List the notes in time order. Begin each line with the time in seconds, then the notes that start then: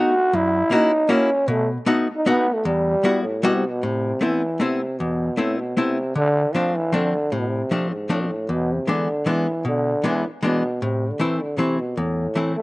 Already playing: A3 B3 D#4 F#4
0.33 F#2 E4
0.71 A#3 C#4 D#4 E4 F#4
1.09 A#3 C#4 E4 F#4
1.48 B2 A3
1.86 A3 B3 D#4 F#4
2.16 D#4
2.26 A3 B3 D#4 F#4
2.54 A3
2.65 E2 G3
3.04 G3 B3 E4 F#4
3.22 A2
3.43 B2 G3 B3 E4 F#4
3.55 C3
3.70 B2
3.83 A2 C3
4.21 E3 A3 B3 C4 E4
4.60 C3 A3 B3 C4 E4
5.00 E2 B2
5.37 A2 A3 B3 C4 E4
5.57 B2
5.77 C3 A3 B3 C4 E4
6.15 D3
6.54 F3 A3 C4 D4
6.76 E3
6.92 D3 F3 A3 C4 D4
7.32 A2 C3
7.39 B2
7.48 C3
7.71 F3 A3 C4 D4
7.91 G#2
8.09 A2 F3 A3 C4 D4
8.20 B2
8.27 A2
8.49 E2 B2
8.72 C3
8.87 D3 E3 G#3 B3 D4
9.26 E3 G#3 B3 D4
9.65 B2 D3
10.04 E3 G#3 B3 D4
10.43 B2 E3 G#3 B3 D4
10.82 A2 C3
11.10 D3
11.19 E3 A3 C4 E4
11.41 D3
11.58 C3 E3 A3 C4 E4
11.78 B2
11.97 E2 A2
12.35 E3 A3 C4 E4
12.56 A3